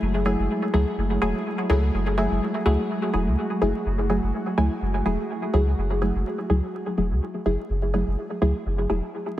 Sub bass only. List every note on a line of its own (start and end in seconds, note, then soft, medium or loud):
0.02 0.35 F#1 loud
0.39 0.48 F#1 medium
0.74 0.85 C#2 medium
0.98 1.18 F#1 medium
1.22 1.33 E1 medium
1.70 1.90 C#2 medium
1.94 2.27 F#1 loud
2.31 2.40 F#1 medium
2.66 2.77 C#2 medium
3.14 3.28 E1 medium
3.27 3.36 C#2 medium
3.62 3.73 F#1 medium
3.86 4.19 F#1 loud
4.23 4.32 F#1 medium
4.58 4.69 C#2 medium
4.82 5.02 F#1 medium
5.06 5.17 E1 medium
5.54 5.74 C#2 medium
5.78 6.11 F#1 loud
6.15 6.24 F#1 medium
6.50 6.61 C#2 medium
6.98 7.12 E1 loud
7.11 7.20 C#2 medium
7.46 7.57 F#1 medium
7.70 8.03 F#1 loud
8.07 8.16 F#1 medium
8.42 8.53 C#2 medium
8.66 8.86 F#1 medium
8.90 9.01 E1 medium